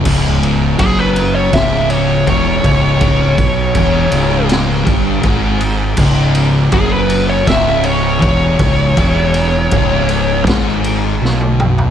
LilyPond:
<<
  \new Staff \with { instrumentName = "Lead electric guitar" } { \time 4/4 \key cis \minor \tempo 4 = 81 r4 gis'16 b'8 cis''16 e''8 cis''8 cis''4~ | cis''2 r2 | r4 gis'16 b'8 cis''16 e''8 cis''8 cis''4~ | cis''2 r2 | }
  \new Staff \with { instrumentName = "Distorted electric guitar" } { \clef bass \time 4/4 \key cis \minor cis,4 fis,4 cis,4 e,8 cis,8~ | cis,8 b,8 e,8 cis,4 g,8 gis,4 | cis,4 fis,4 cis,4 e,8 cis,8 | e,4 cis,4 gis,4 b,4 | }
  \new Staff \with { instrumentName = "Distorted electric guitar" } { \clef bass \time 4/4 \key cis \minor cis,4 fis,4 cis,4 e,8 cis,8~ | cis,8 b,8 e,8 cis,4 g,8 gis,4 | cis,4 fis,4 cis,4 e,8 cis,8 | e,4 cis,4 gis,4 b,4 | }
  \new Staff \with { instrumentName = "Fingered electric bass" } { \clef bass \time 4/4 \key cis \minor cis,,4 fis,,4 cis,,4 e,,8 cis,,8~ | cis,,8 b,,8 e,,8 cis,,4 g,,8 gis,,4 | cis,,4 fis,,4 cis,,4 e,,8 cis,,8 | e,,4 cis,,4 gis,,4 b,,4 | }
  \new DrumStaff \with { instrumentName = "Drums" } \drummode { \time 4/4 <cymc bd>8 cymr8 <bd cymr>8 cymr8 <bd cymr sn>16 sn16 cymr8 <bd cymr>8 <bd cymr>8 | <bd cymr>8 <bd cymr>8 <bd cymr>8 cymr8 <cymr sn>16 sn16 <bd cymr>8 <bd cymr>8 cymr8 | <cymc bd>8 cymr8 <bd cymr>8 cymr8 <bd cymr sn>16 sn16 cymr8 <bd cymr>8 <bd cymr>8 | <bd cymr>8 cymr8 <bd cymr>8 cymr8 <bd cymr sn>16 sn16 cymr8 sn16 tommh16 toml16 tomfh16 | }
>>